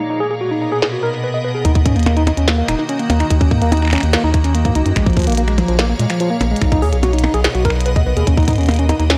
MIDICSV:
0, 0, Header, 1, 6, 480
1, 0, Start_track
1, 0, Time_signature, 4, 2, 24, 8
1, 0, Key_signature, -6, "minor"
1, 0, Tempo, 413793
1, 10648, End_track
2, 0, Start_track
2, 0, Title_t, "Ambient pad"
2, 0, Program_c, 0, 92
2, 0, Note_on_c, 0, 47, 85
2, 0, Note_on_c, 0, 68, 92
2, 0, Note_on_c, 0, 73, 88
2, 45, Note_on_c, 0, 70, 92
2, 124, Note_on_c, 0, 59, 94
2, 242, Note_on_c, 0, 78, 73
2, 364, Note_on_c, 0, 75, 70
2, 761, Note_off_c, 0, 73, 0
2, 762, Note_off_c, 0, 68, 0
2, 1914, Note_off_c, 0, 59, 0
2, 1915, Note_off_c, 0, 47, 0
2, 1915, Note_on_c, 0, 51, 85
2, 1961, Note_on_c, 0, 58, 85
2, 2100, Note_on_c, 0, 66, 83
2, 2630, Note_on_c, 0, 82, 81
2, 3035, Note_off_c, 0, 78, 0
2, 3451, Note_off_c, 0, 70, 0
2, 5755, Note_off_c, 0, 51, 0
2, 5755, Note_off_c, 0, 66, 0
2, 5757, Note_on_c, 0, 46, 75
2, 5808, Note_on_c, 0, 68, 88
2, 5914, Note_on_c, 0, 77, 96
2, 6012, Note_on_c, 0, 73, 97
2, 6522, Note_off_c, 0, 82, 0
2, 6523, Note_off_c, 0, 75, 0
2, 7674, Note_off_c, 0, 58, 0
2, 7674, Note_on_c, 0, 47, 74
2, 7675, Note_off_c, 0, 77, 0
2, 7676, Note_off_c, 0, 46, 0
2, 7745, Note_on_c, 0, 75, 83
2, 7777, Note_on_c, 0, 59, 74
2, 7897, Note_on_c, 0, 78, 91
2, 7998, Note_on_c, 0, 70, 76
2, 8443, Note_off_c, 0, 68, 0
2, 8443, Note_off_c, 0, 73, 0
2, 9594, Note_off_c, 0, 47, 0
2, 9594, Note_on_c, 0, 51, 72
2, 9595, Note_off_c, 0, 59, 0
2, 9708, Note_on_c, 0, 58, 84
2, 9805, Note_on_c, 0, 66, 84
2, 9805, Note_on_c, 0, 82, 93
2, 10428, Note_off_c, 0, 78, 0
2, 10648, Note_off_c, 0, 51, 0
2, 10648, Note_off_c, 0, 58, 0
2, 10648, Note_off_c, 0, 66, 0
2, 10648, Note_off_c, 0, 70, 0
2, 10648, Note_off_c, 0, 75, 0
2, 10648, Note_off_c, 0, 82, 0
2, 10648, End_track
3, 0, Start_track
3, 0, Title_t, "Tine electric piano"
3, 0, Program_c, 1, 4
3, 115, Note_on_c, 1, 63, 76
3, 209, Note_off_c, 1, 63, 0
3, 235, Note_on_c, 1, 68, 98
3, 298, Note_off_c, 1, 68, 0
3, 355, Note_on_c, 1, 68, 74
3, 393, Note_off_c, 1, 68, 0
3, 474, Note_on_c, 1, 66, 82
3, 569, Note_off_c, 1, 66, 0
3, 594, Note_on_c, 1, 63, 75
3, 689, Note_off_c, 1, 63, 0
3, 714, Note_on_c, 1, 63, 72
3, 809, Note_off_c, 1, 63, 0
3, 834, Note_on_c, 1, 68, 101
3, 897, Note_off_c, 1, 68, 0
3, 954, Note_on_c, 1, 68, 79
3, 992, Note_off_c, 1, 68, 0
3, 1073, Note_on_c, 1, 66, 71
3, 1169, Note_off_c, 1, 66, 0
3, 1193, Note_on_c, 1, 70, 98
3, 1257, Note_off_c, 1, 70, 0
3, 1434, Note_on_c, 1, 71, 83
3, 1472, Note_off_c, 1, 71, 0
3, 1554, Note_on_c, 1, 75, 73
3, 1592, Note_off_c, 1, 75, 0
3, 1675, Note_on_c, 1, 71, 75
3, 1738, Note_off_c, 1, 71, 0
3, 1794, Note_on_c, 1, 68, 74
3, 1889, Note_off_c, 1, 68, 0
3, 1913, Note_on_c, 1, 63, 98
3, 1977, Note_off_c, 1, 63, 0
3, 2034, Note_on_c, 1, 63, 78
3, 2072, Note_off_c, 1, 63, 0
3, 2153, Note_on_c, 1, 61, 80
3, 2249, Note_off_c, 1, 61, 0
3, 2274, Note_on_c, 1, 58, 80
3, 2369, Note_off_c, 1, 58, 0
3, 2395, Note_on_c, 1, 58, 82
3, 2489, Note_off_c, 1, 58, 0
3, 2514, Note_on_c, 1, 63, 101
3, 2578, Note_off_c, 1, 63, 0
3, 2634, Note_on_c, 1, 63, 76
3, 2672, Note_off_c, 1, 63, 0
3, 2754, Note_on_c, 1, 61, 79
3, 2849, Note_off_c, 1, 61, 0
3, 2875, Note_on_c, 1, 58, 86
3, 2969, Note_off_c, 1, 58, 0
3, 2994, Note_on_c, 1, 58, 76
3, 3089, Note_off_c, 1, 58, 0
3, 3115, Note_on_c, 1, 63, 105
3, 3178, Note_off_c, 1, 63, 0
3, 3236, Note_on_c, 1, 63, 76
3, 3273, Note_off_c, 1, 63, 0
3, 3355, Note_on_c, 1, 61, 84
3, 3450, Note_off_c, 1, 61, 0
3, 3474, Note_on_c, 1, 58, 76
3, 3569, Note_off_c, 1, 58, 0
3, 3594, Note_on_c, 1, 58, 74
3, 3689, Note_off_c, 1, 58, 0
3, 3714, Note_on_c, 1, 63, 102
3, 3778, Note_off_c, 1, 63, 0
3, 3834, Note_on_c, 1, 63, 79
3, 3873, Note_off_c, 1, 63, 0
3, 3954, Note_on_c, 1, 61, 80
3, 4049, Note_off_c, 1, 61, 0
3, 4073, Note_on_c, 1, 58, 78
3, 4169, Note_off_c, 1, 58, 0
3, 4194, Note_on_c, 1, 58, 80
3, 4289, Note_off_c, 1, 58, 0
3, 4314, Note_on_c, 1, 63, 104
3, 4378, Note_off_c, 1, 63, 0
3, 4434, Note_on_c, 1, 63, 76
3, 4472, Note_off_c, 1, 63, 0
3, 4554, Note_on_c, 1, 61, 78
3, 4649, Note_off_c, 1, 61, 0
3, 4675, Note_on_c, 1, 58, 77
3, 4769, Note_off_c, 1, 58, 0
3, 4796, Note_on_c, 1, 58, 83
3, 4890, Note_off_c, 1, 58, 0
3, 4916, Note_on_c, 1, 63, 101
3, 4979, Note_off_c, 1, 63, 0
3, 5036, Note_on_c, 1, 63, 78
3, 5073, Note_off_c, 1, 63, 0
3, 5157, Note_on_c, 1, 61, 74
3, 5250, Note_off_c, 1, 61, 0
3, 5276, Note_on_c, 1, 58, 83
3, 5370, Note_off_c, 1, 58, 0
3, 5397, Note_on_c, 1, 58, 78
3, 5490, Note_off_c, 1, 58, 0
3, 5516, Note_on_c, 1, 63, 100
3, 5579, Note_off_c, 1, 63, 0
3, 5636, Note_on_c, 1, 63, 77
3, 5673, Note_off_c, 1, 63, 0
3, 5755, Note_on_c, 1, 56, 80
3, 5850, Note_off_c, 1, 56, 0
3, 5876, Note_on_c, 1, 53, 77
3, 5970, Note_off_c, 1, 53, 0
3, 5995, Note_on_c, 1, 53, 80
3, 6090, Note_off_c, 1, 53, 0
3, 6115, Note_on_c, 1, 58, 104
3, 6178, Note_off_c, 1, 58, 0
3, 6235, Note_on_c, 1, 58, 85
3, 6273, Note_off_c, 1, 58, 0
3, 6354, Note_on_c, 1, 56, 79
3, 6449, Note_off_c, 1, 56, 0
3, 6474, Note_on_c, 1, 53, 74
3, 6569, Note_off_c, 1, 53, 0
3, 6595, Note_on_c, 1, 53, 79
3, 6689, Note_off_c, 1, 53, 0
3, 6715, Note_on_c, 1, 58, 104
3, 6778, Note_off_c, 1, 58, 0
3, 6835, Note_on_c, 1, 58, 77
3, 6873, Note_off_c, 1, 58, 0
3, 6955, Note_on_c, 1, 56, 79
3, 7050, Note_off_c, 1, 56, 0
3, 7074, Note_on_c, 1, 53, 79
3, 7169, Note_off_c, 1, 53, 0
3, 7195, Note_on_c, 1, 53, 84
3, 7289, Note_off_c, 1, 53, 0
3, 7314, Note_on_c, 1, 58, 100
3, 7378, Note_off_c, 1, 58, 0
3, 7434, Note_on_c, 1, 58, 78
3, 7472, Note_off_c, 1, 58, 0
3, 7555, Note_on_c, 1, 56, 80
3, 7650, Note_off_c, 1, 56, 0
3, 7674, Note_on_c, 1, 63, 79
3, 7769, Note_off_c, 1, 63, 0
3, 7795, Note_on_c, 1, 63, 81
3, 7889, Note_off_c, 1, 63, 0
3, 7914, Note_on_c, 1, 68, 105
3, 7977, Note_off_c, 1, 68, 0
3, 8035, Note_on_c, 1, 68, 76
3, 8073, Note_off_c, 1, 68, 0
3, 8155, Note_on_c, 1, 66, 84
3, 8249, Note_off_c, 1, 66, 0
3, 8274, Note_on_c, 1, 63, 78
3, 8369, Note_off_c, 1, 63, 0
3, 8395, Note_on_c, 1, 63, 74
3, 8490, Note_off_c, 1, 63, 0
3, 8515, Note_on_c, 1, 68, 102
3, 8578, Note_off_c, 1, 68, 0
3, 8635, Note_on_c, 1, 68, 86
3, 8673, Note_off_c, 1, 68, 0
3, 8756, Note_on_c, 1, 66, 75
3, 8850, Note_off_c, 1, 66, 0
3, 8876, Note_on_c, 1, 70, 101
3, 8939, Note_off_c, 1, 70, 0
3, 9116, Note_on_c, 1, 71, 84
3, 9153, Note_off_c, 1, 71, 0
3, 9236, Note_on_c, 1, 75, 77
3, 9273, Note_off_c, 1, 75, 0
3, 9356, Note_on_c, 1, 71, 76
3, 9419, Note_off_c, 1, 71, 0
3, 9475, Note_on_c, 1, 68, 77
3, 9570, Note_off_c, 1, 68, 0
3, 9595, Note_on_c, 1, 61, 82
3, 9658, Note_off_c, 1, 61, 0
3, 9715, Note_on_c, 1, 63, 101
3, 9778, Note_off_c, 1, 63, 0
3, 9836, Note_on_c, 1, 63, 80
3, 9873, Note_off_c, 1, 63, 0
3, 9955, Note_on_c, 1, 61, 76
3, 10049, Note_off_c, 1, 61, 0
3, 10074, Note_on_c, 1, 58, 85
3, 10169, Note_off_c, 1, 58, 0
3, 10195, Note_on_c, 1, 61, 79
3, 10258, Note_off_c, 1, 61, 0
3, 10315, Note_on_c, 1, 63, 98
3, 10378, Note_off_c, 1, 63, 0
3, 10434, Note_on_c, 1, 63, 79
3, 10472, Note_off_c, 1, 63, 0
3, 10555, Note_on_c, 1, 61, 86
3, 10648, Note_off_c, 1, 61, 0
3, 10648, End_track
4, 0, Start_track
4, 0, Title_t, "Analog synth bass"
4, 0, Program_c, 2, 38
4, 1913, Note_on_c, 2, 39, 100
4, 2153, Note_on_c, 2, 44, 89
4, 2170, Note_off_c, 2, 39, 0
4, 2274, Note_on_c, 2, 39, 98
4, 2291, Note_off_c, 2, 44, 0
4, 2686, Note_off_c, 2, 39, 0
4, 2753, Note_on_c, 2, 39, 77
4, 3046, Note_off_c, 2, 39, 0
4, 3113, Note_on_c, 2, 27, 104
4, 3191, Note_off_c, 2, 27, 0
4, 3593, Note_on_c, 2, 39, 90
4, 3749, Note_off_c, 2, 39, 0
4, 3833, Note_on_c, 2, 39, 102
4, 4074, Note_on_c, 2, 44, 92
4, 4091, Note_off_c, 2, 39, 0
4, 4194, Note_on_c, 2, 39, 98
4, 4211, Note_off_c, 2, 44, 0
4, 4606, Note_off_c, 2, 39, 0
4, 4674, Note_on_c, 2, 39, 79
4, 4830, Note_off_c, 2, 39, 0
4, 4915, Note_on_c, 2, 39, 84
4, 5387, Note_off_c, 2, 39, 0
4, 5394, Note_on_c, 2, 44, 82
4, 5472, Note_off_c, 2, 44, 0
4, 5515, Note_on_c, 2, 37, 92
4, 5592, Note_off_c, 2, 37, 0
4, 5636, Note_on_c, 2, 42, 106
4, 5713, Note_off_c, 2, 42, 0
4, 5754, Note_on_c, 2, 34, 100
4, 5994, Note_on_c, 2, 39, 91
4, 6011, Note_off_c, 2, 34, 0
4, 6115, Note_on_c, 2, 34, 97
4, 6132, Note_off_c, 2, 39, 0
4, 6527, Note_off_c, 2, 34, 0
4, 6595, Note_on_c, 2, 34, 81
4, 6887, Note_off_c, 2, 34, 0
4, 6954, Note_on_c, 2, 46, 105
4, 7032, Note_off_c, 2, 46, 0
4, 7435, Note_on_c, 2, 34, 87
4, 7590, Note_off_c, 2, 34, 0
4, 7674, Note_on_c, 2, 35, 100
4, 7914, Note_on_c, 2, 39, 93
4, 7931, Note_off_c, 2, 35, 0
4, 8034, Note_on_c, 2, 35, 97
4, 8051, Note_off_c, 2, 39, 0
4, 8446, Note_off_c, 2, 35, 0
4, 8513, Note_on_c, 2, 35, 79
4, 8669, Note_off_c, 2, 35, 0
4, 8754, Note_on_c, 2, 35, 85
4, 9227, Note_off_c, 2, 35, 0
4, 9233, Note_on_c, 2, 39, 87
4, 9312, Note_off_c, 2, 39, 0
4, 9354, Note_on_c, 2, 35, 91
4, 9432, Note_off_c, 2, 35, 0
4, 9474, Note_on_c, 2, 39, 108
4, 9552, Note_off_c, 2, 39, 0
4, 9594, Note_on_c, 2, 39, 99
4, 9834, Note_on_c, 2, 44, 88
4, 9851, Note_off_c, 2, 39, 0
4, 9954, Note_on_c, 2, 39, 98
4, 9971, Note_off_c, 2, 44, 0
4, 10366, Note_off_c, 2, 39, 0
4, 10434, Note_on_c, 2, 39, 80
4, 10648, Note_off_c, 2, 39, 0
4, 10648, End_track
5, 0, Start_track
5, 0, Title_t, "Percussion blips"
5, 2394, Note_on_c, 9, 64, 83
5, 2510, Note_off_c, 9, 64, 0
5, 2634, Note_on_c, 9, 64, 93
5, 2750, Note_off_c, 9, 64, 0
5, 3593, Note_on_c, 9, 64, 93
5, 3709, Note_off_c, 9, 64, 0
5, 4316, Note_on_c, 9, 64, 82
5, 4432, Note_off_c, 9, 64, 0
5, 4556, Note_on_c, 9, 64, 91
5, 4672, Note_off_c, 9, 64, 0
5, 6474, Note_on_c, 9, 64, 86
5, 6590, Note_off_c, 9, 64, 0
5, 7434, Note_on_c, 9, 64, 90
5, 7550, Note_off_c, 9, 64, 0
5, 8155, Note_on_c, 9, 64, 82
5, 8271, Note_off_c, 9, 64, 0
5, 8394, Note_on_c, 9, 64, 91
5, 8510, Note_off_c, 9, 64, 0
5, 10075, Note_on_c, 9, 64, 84
5, 10191, Note_off_c, 9, 64, 0
5, 10315, Note_on_c, 9, 64, 96
5, 10431, Note_off_c, 9, 64, 0
5, 10648, End_track
6, 0, Start_track
6, 0, Title_t, "Drums"
6, 954, Note_on_c, 9, 38, 118
6, 1070, Note_off_c, 9, 38, 0
6, 1913, Note_on_c, 9, 42, 87
6, 1914, Note_on_c, 9, 36, 99
6, 2029, Note_off_c, 9, 42, 0
6, 2030, Note_off_c, 9, 36, 0
6, 2034, Note_on_c, 9, 36, 117
6, 2034, Note_on_c, 9, 42, 39
6, 2150, Note_off_c, 9, 36, 0
6, 2150, Note_off_c, 9, 42, 0
6, 2153, Note_on_c, 9, 36, 120
6, 2153, Note_on_c, 9, 42, 81
6, 2269, Note_off_c, 9, 36, 0
6, 2269, Note_off_c, 9, 42, 0
6, 2274, Note_on_c, 9, 42, 26
6, 2314, Note_off_c, 9, 42, 0
6, 2314, Note_on_c, 9, 42, 35
6, 2354, Note_off_c, 9, 42, 0
6, 2354, Note_on_c, 9, 42, 45
6, 2394, Note_off_c, 9, 42, 0
6, 2394, Note_on_c, 9, 26, 57
6, 2394, Note_on_c, 9, 42, 83
6, 2510, Note_off_c, 9, 26, 0
6, 2510, Note_off_c, 9, 42, 0
6, 2514, Note_on_c, 9, 42, 39
6, 2630, Note_off_c, 9, 42, 0
6, 2634, Note_on_c, 9, 42, 84
6, 2750, Note_off_c, 9, 42, 0
6, 2754, Note_on_c, 9, 42, 57
6, 2870, Note_off_c, 9, 42, 0
6, 2874, Note_on_c, 9, 38, 117
6, 2874, Note_on_c, 9, 42, 84
6, 2990, Note_off_c, 9, 38, 0
6, 2990, Note_off_c, 9, 42, 0
6, 3114, Note_on_c, 9, 26, 87
6, 3114, Note_on_c, 9, 42, 86
6, 3230, Note_off_c, 9, 26, 0
6, 3230, Note_off_c, 9, 42, 0
6, 3354, Note_on_c, 9, 42, 83
6, 3470, Note_off_c, 9, 42, 0
6, 3474, Note_on_c, 9, 42, 40
6, 3590, Note_off_c, 9, 42, 0
6, 3593, Note_on_c, 9, 42, 85
6, 3709, Note_off_c, 9, 42, 0
6, 3714, Note_on_c, 9, 26, 57
6, 3714, Note_on_c, 9, 42, 56
6, 3830, Note_off_c, 9, 26, 0
6, 3830, Note_off_c, 9, 42, 0
6, 3834, Note_on_c, 9, 36, 103
6, 3834, Note_on_c, 9, 42, 89
6, 3950, Note_off_c, 9, 36, 0
6, 3950, Note_off_c, 9, 42, 0
6, 3954, Note_on_c, 9, 36, 123
6, 3954, Note_on_c, 9, 42, 39
6, 4070, Note_off_c, 9, 36, 0
6, 4070, Note_off_c, 9, 42, 0
6, 4074, Note_on_c, 9, 36, 125
6, 4190, Note_off_c, 9, 36, 0
6, 4195, Note_on_c, 9, 42, 56
6, 4311, Note_off_c, 9, 42, 0
6, 4316, Note_on_c, 9, 42, 84
6, 4376, Note_off_c, 9, 42, 0
6, 4376, Note_on_c, 9, 42, 39
6, 4435, Note_on_c, 9, 26, 36
6, 4466, Note_off_c, 9, 26, 0
6, 4466, Note_on_c, 9, 26, 40
6, 4492, Note_off_c, 9, 42, 0
6, 4496, Note_off_c, 9, 26, 0
6, 4496, Note_on_c, 9, 26, 46
6, 4526, Note_off_c, 9, 26, 0
6, 4526, Note_on_c, 9, 26, 52
6, 4556, Note_off_c, 9, 26, 0
6, 4556, Note_on_c, 9, 26, 56
6, 4556, Note_on_c, 9, 42, 85
6, 4586, Note_off_c, 9, 26, 0
6, 4586, Note_on_c, 9, 26, 62
6, 4615, Note_off_c, 9, 26, 0
6, 4615, Note_on_c, 9, 26, 66
6, 4645, Note_off_c, 9, 26, 0
6, 4645, Note_on_c, 9, 26, 73
6, 4672, Note_off_c, 9, 42, 0
6, 4675, Note_on_c, 9, 42, 57
6, 4761, Note_off_c, 9, 26, 0
6, 4791, Note_off_c, 9, 42, 0
6, 4794, Note_on_c, 9, 38, 127
6, 4794, Note_on_c, 9, 42, 82
6, 4910, Note_off_c, 9, 38, 0
6, 4910, Note_off_c, 9, 42, 0
6, 5034, Note_on_c, 9, 26, 55
6, 5034, Note_on_c, 9, 42, 85
6, 5035, Note_on_c, 9, 36, 111
6, 5150, Note_off_c, 9, 26, 0
6, 5150, Note_off_c, 9, 42, 0
6, 5151, Note_off_c, 9, 36, 0
6, 5155, Note_on_c, 9, 42, 58
6, 5271, Note_off_c, 9, 42, 0
6, 5275, Note_on_c, 9, 42, 84
6, 5391, Note_off_c, 9, 42, 0
6, 5395, Note_on_c, 9, 36, 114
6, 5395, Note_on_c, 9, 42, 41
6, 5511, Note_off_c, 9, 36, 0
6, 5511, Note_off_c, 9, 42, 0
6, 5514, Note_on_c, 9, 42, 87
6, 5630, Note_off_c, 9, 42, 0
6, 5635, Note_on_c, 9, 42, 56
6, 5751, Note_off_c, 9, 42, 0
6, 5755, Note_on_c, 9, 26, 80
6, 5755, Note_on_c, 9, 36, 106
6, 5755, Note_on_c, 9, 42, 83
6, 5871, Note_off_c, 9, 26, 0
6, 5871, Note_off_c, 9, 36, 0
6, 5871, Note_off_c, 9, 42, 0
6, 5875, Note_on_c, 9, 36, 126
6, 5875, Note_on_c, 9, 42, 18
6, 5915, Note_off_c, 9, 42, 0
6, 5915, Note_on_c, 9, 42, 21
6, 5955, Note_off_c, 9, 42, 0
6, 5955, Note_on_c, 9, 42, 24
6, 5991, Note_off_c, 9, 36, 0
6, 5994, Note_off_c, 9, 42, 0
6, 5994, Note_on_c, 9, 42, 38
6, 5995, Note_on_c, 9, 36, 123
6, 6024, Note_off_c, 9, 42, 0
6, 6024, Note_on_c, 9, 42, 41
6, 6034, Note_off_c, 9, 42, 0
6, 6034, Note_on_c, 9, 42, 29
6, 6054, Note_off_c, 9, 42, 0
6, 6054, Note_on_c, 9, 42, 48
6, 6073, Note_off_c, 9, 42, 0
6, 6073, Note_on_c, 9, 42, 33
6, 6084, Note_off_c, 9, 42, 0
6, 6084, Note_on_c, 9, 42, 53
6, 6111, Note_off_c, 9, 36, 0
6, 6114, Note_off_c, 9, 42, 0
6, 6114, Note_on_c, 9, 42, 57
6, 6144, Note_off_c, 9, 42, 0
6, 6144, Note_on_c, 9, 42, 62
6, 6174, Note_off_c, 9, 42, 0
6, 6174, Note_on_c, 9, 42, 68
6, 6204, Note_off_c, 9, 42, 0
6, 6204, Note_on_c, 9, 42, 74
6, 6234, Note_off_c, 9, 42, 0
6, 6234, Note_on_c, 9, 42, 81
6, 6350, Note_off_c, 9, 42, 0
6, 6354, Note_on_c, 9, 26, 52
6, 6354, Note_on_c, 9, 42, 38
6, 6470, Note_off_c, 9, 26, 0
6, 6470, Note_off_c, 9, 42, 0
6, 6474, Note_on_c, 9, 42, 84
6, 6590, Note_off_c, 9, 42, 0
6, 6594, Note_on_c, 9, 42, 54
6, 6710, Note_off_c, 9, 42, 0
6, 6715, Note_on_c, 9, 38, 126
6, 6715, Note_on_c, 9, 42, 80
6, 6831, Note_off_c, 9, 38, 0
6, 6831, Note_off_c, 9, 42, 0
6, 6955, Note_on_c, 9, 42, 86
6, 7071, Note_off_c, 9, 42, 0
6, 7074, Note_on_c, 9, 26, 77
6, 7074, Note_on_c, 9, 42, 55
6, 7190, Note_off_c, 9, 26, 0
6, 7190, Note_off_c, 9, 42, 0
6, 7194, Note_on_c, 9, 42, 80
6, 7310, Note_off_c, 9, 42, 0
6, 7434, Note_on_c, 9, 42, 82
6, 7550, Note_off_c, 9, 42, 0
6, 7614, Note_on_c, 9, 42, 54
6, 7674, Note_off_c, 9, 42, 0
6, 7674, Note_on_c, 9, 26, 51
6, 7674, Note_on_c, 9, 36, 104
6, 7674, Note_on_c, 9, 42, 79
6, 7790, Note_off_c, 9, 26, 0
6, 7790, Note_off_c, 9, 36, 0
6, 7790, Note_off_c, 9, 42, 0
6, 7794, Note_on_c, 9, 36, 126
6, 7795, Note_on_c, 9, 42, 38
6, 7910, Note_off_c, 9, 36, 0
6, 7911, Note_off_c, 9, 42, 0
6, 7915, Note_on_c, 9, 46, 62
6, 8031, Note_off_c, 9, 46, 0
6, 8035, Note_on_c, 9, 42, 55
6, 8151, Note_off_c, 9, 42, 0
6, 8155, Note_on_c, 9, 42, 79
6, 8271, Note_off_c, 9, 42, 0
6, 8275, Note_on_c, 9, 42, 37
6, 8335, Note_off_c, 9, 42, 0
6, 8335, Note_on_c, 9, 42, 81
6, 8394, Note_on_c, 9, 26, 77
6, 8451, Note_off_c, 9, 42, 0
6, 8510, Note_off_c, 9, 26, 0
6, 8515, Note_on_c, 9, 42, 53
6, 8631, Note_off_c, 9, 42, 0
6, 8635, Note_on_c, 9, 38, 124
6, 8635, Note_on_c, 9, 42, 80
6, 8751, Note_off_c, 9, 38, 0
6, 8751, Note_off_c, 9, 42, 0
6, 8755, Note_on_c, 9, 42, 36
6, 8871, Note_off_c, 9, 42, 0
6, 8874, Note_on_c, 9, 36, 111
6, 8874, Note_on_c, 9, 42, 80
6, 8935, Note_on_c, 9, 26, 53
6, 8990, Note_off_c, 9, 36, 0
6, 8990, Note_off_c, 9, 42, 0
6, 9051, Note_off_c, 9, 26, 0
6, 9054, Note_on_c, 9, 42, 81
6, 9115, Note_off_c, 9, 42, 0
6, 9115, Note_on_c, 9, 42, 54
6, 9231, Note_off_c, 9, 42, 0
6, 9234, Note_on_c, 9, 36, 112
6, 9235, Note_on_c, 9, 42, 39
6, 9350, Note_off_c, 9, 36, 0
6, 9351, Note_off_c, 9, 42, 0
6, 9474, Note_on_c, 9, 42, 54
6, 9590, Note_off_c, 9, 42, 0
6, 9594, Note_on_c, 9, 36, 101
6, 9595, Note_on_c, 9, 42, 76
6, 9710, Note_off_c, 9, 36, 0
6, 9711, Note_off_c, 9, 42, 0
6, 9714, Note_on_c, 9, 36, 117
6, 9716, Note_on_c, 9, 42, 16
6, 9745, Note_off_c, 9, 42, 0
6, 9745, Note_on_c, 9, 42, 19
6, 9776, Note_off_c, 9, 42, 0
6, 9776, Note_on_c, 9, 42, 20
6, 9806, Note_off_c, 9, 42, 0
6, 9806, Note_on_c, 9, 42, 23
6, 9830, Note_off_c, 9, 36, 0
6, 9834, Note_on_c, 9, 36, 119
6, 9835, Note_off_c, 9, 42, 0
6, 9835, Note_on_c, 9, 42, 75
6, 9866, Note_off_c, 9, 42, 0
6, 9866, Note_on_c, 9, 42, 27
6, 9896, Note_off_c, 9, 42, 0
6, 9896, Note_on_c, 9, 42, 29
6, 9925, Note_off_c, 9, 42, 0
6, 9925, Note_on_c, 9, 42, 32
6, 9950, Note_off_c, 9, 36, 0
6, 9956, Note_off_c, 9, 42, 0
6, 9956, Note_on_c, 9, 42, 24
6, 9986, Note_off_c, 9, 42, 0
6, 9986, Note_on_c, 9, 42, 26
6, 10015, Note_off_c, 9, 42, 0
6, 10015, Note_on_c, 9, 42, 29
6, 10045, Note_off_c, 9, 42, 0
6, 10045, Note_on_c, 9, 42, 33
6, 10075, Note_off_c, 9, 42, 0
6, 10075, Note_on_c, 9, 26, 53
6, 10075, Note_on_c, 9, 42, 77
6, 10105, Note_off_c, 9, 42, 0
6, 10105, Note_on_c, 9, 42, 39
6, 10136, Note_off_c, 9, 42, 0
6, 10136, Note_on_c, 9, 42, 42
6, 10166, Note_off_c, 9, 42, 0
6, 10166, Note_on_c, 9, 42, 46
6, 10191, Note_off_c, 9, 26, 0
6, 10195, Note_off_c, 9, 42, 0
6, 10195, Note_on_c, 9, 42, 36
6, 10311, Note_off_c, 9, 42, 0
6, 10315, Note_on_c, 9, 42, 78
6, 10431, Note_off_c, 9, 42, 0
6, 10435, Note_on_c, 9, 42, 52
6, 10551, Note_off_c, 9, 42, 0
6, 10555, Note_on_c, 9, 38, 120
6, 10555, Note_on_c, 9, 42, 77
6, 10648, Note_off_c, 9, 38, 0
6, 10648, Note_off_c, 9, 42, 0
6, 10648, End_track
0, 0, End_of_file